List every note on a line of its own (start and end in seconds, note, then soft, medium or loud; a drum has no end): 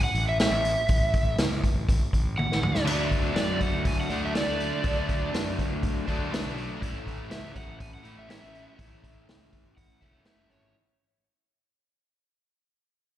0.04 0.27 F#5 medium
0.14 0.49 A1 medium
0.14 open hi-hat soft
0.29 0.40 E5 medium
0.40 1.36 E5 loud
0.40 snare loud
0.40 open hi-hat medium
0.51 0.74 A1 medium
0.65 open hi-hat soft
0.88 1.35 A1 medium
0.88 kick medium
0.88 open hi-hat medium
1.14 kick medium
1.14 open hi-hat soft
1.38 1.62 C#2 medium
1.38 snare loud
1.38 open hi-hat medium
1.52 snare soft
1.64 kick medium
1.64 open hi-hat soft
1.74 1.98 A1 medium
1.89 kick loud
1.89 open hi-hat medium
2.13 2.47 A1 medium
2.13 kick medium
2.13 open hi-hat soft
2.38 2.86 F#5 loud
2.38 high tom medium
2.49 2.61 A1 medium
2.49 snare medium
2.61 3.32 D2 medium
2.61 mid tom medium
2.75 snare medium
2.85 4.08 D3 medium
2.85 4.09 F#3 loud
2.85 4.11 A3 loud
2.85 4.09 D4 loud
2.85 open hi-hat medium
2.85 splash medium
3.11 kick medium
3.11 open hi-hat soft
3.36 3.59 F#2 medium
3.36 3.60 D5 medium
3.36 snare loud
3.36 open hi-hat medium
3.61 3.85 F#5 loud
3.61 kick medium
3.61 open hi-hat soft
3.72 3.96 D2 medium
3.85 3.99 G#5 medium
3.85 kick loud
3.85 open hi-hat medium
4.00 4.23 F#5 medium
4.09 4.44 D2 medium
4.09 4.33 D3 medium
4.09 4.34 F#3 medium
4.09 4.36 A3 medium
4.09 4.33 D4 medium
4.09 open hi-hat soft
4.25 4.36 E5 medium
4.35 4.81 D3 medium
4.35 4.83 F#3 medium
4.35 4.84 A3 medium
4.35 4.84 D4 medium
4.35 5.32 D5 medium
4.35 snare loud
4.35 open hi-hat medium
4.47 4.70 D2 medium
4.60 open hi-hat soft
4.82 5.30 D2 medium
4.82 6.05 D3 medium
4.82 6.06 F#3 medium
4.82 6.08 A3 medium
4.82 6.06 D4 medium
4.82 kick loud
4.82 open hi-hat medium
5.09 kick medium
5.09 open hi-hat soft
5.34 5.57 F#2 medium
5.34 snare loud
5.34 open hi-hat medium
5.59 kick medium
5.59 open hi-hat soft
5.72 5.94 D2 medium
5.83 kick loud
5.83 open hi-hat medium
6.07 6.42 D2 medium
6.07 6.30 D3 medium
6.07 6.30 F#3 medium
6.07 6.32 A3 medium
6.07 6.31 D4 medium
6.07 kick medium
6.07 open hi-hat soft
6.31 6.79 D3 medium
6.31 6.80 F#3 medium
6.31 6.82 A3 medium
6.31 6.81 D4 medium
6.31 snare loud
6.31 open hi-hat medium
6.45 6.68 B1 medium
6.58 open hi-hat soft
6.80 7.28 A1 medium
6.80 8.06 A2 medium
6.80 8.05 E3 medium
6.80 8.04 A3 medium
6.80 8.04 C#4 loud
6.80 8.03 E4 loud
6.80 kick medium
6.80 open hi-hat medium
7.07 kick medium
7.07 open hi-hat soft
7.31 7.54 C#2 medium
7.31 7.55 E5 medium
7.31 snare loud
7.31 open hi-hat medium
7.45 snare soft
7.56 7.80 F#5 medium
7.56 kick medium
7.56 open hi-hat soft
7.69 7.91 A1 medium
7.80 7.93 G#5 medium
7.80 kick loud
7.80 open hi-hat medium
7.94 8.17 F#5 medium
8.03 8.39 A1 medium
8.03 8.28 A2 medium
8.03 8.28 E3 medium
8.03 8.29 A3 medium
8.03 8.30 C#4 medium
8.03 8.31 E4 medium
8.03 open hi-hat soft
8.18 8.30 E5 medium
8.28 8.77 A2 medium
8.28 8.78 E3 medium
8.28 8.79 A3 medium
8.28 8.79 C#4 medium
8.28 8.80 E4 medium
8.28 8.78 E5 loud
8.28 snare loud
8.28 open hi-hat medium
8.43 8.65 A1 medium
8.55 open hi-hat soft
8.78 9.24 A1 medium
8.78 9.99 A2 medium
8.78 10.00 E3 loud
8.78 10.00 A3 medium
8.78 10.00 C#4 loud
8.78 9.99 E4 loud
8.78 kick loud
8.78 open hi-hat medium
9.04 kick medium
9.04 open hi-hat soft
9.29 9.51 C#2 medium
9.29 snare loud
9.29 open hi-hat medium
9.53 kick medium
9.53 open hi-hat soft
9.65 9.87 A1 medium
9.77 10.24 F#5 medium
9.77 kick loud
9.77 open hi-hat medium
10.01 10.24 E1 medium
10.01 10.24 A2 medium
10.01 10.25 E3 medium
10.01 10.25 A3 medium
10.01 10.25 C#4 medium
10.01 10.24 E4 medium
10.01 kick medium
10.01 open hi-hat soft
10.25 10.48 F#1 medium
10.25 10.73 A2 medium
10.25 10.73 E3 medium
10.25 10.74 A3 medium
10.25 10.74 C#4 medium
10.25 10.74 E4 medium
10.25 10.50 E5 medium
10.25 snare loud
10.25 open hi-hat medium
10.50 10.72 G#1 medium
10.50 10.74 C#5 medium
10.50 open hi-hat soft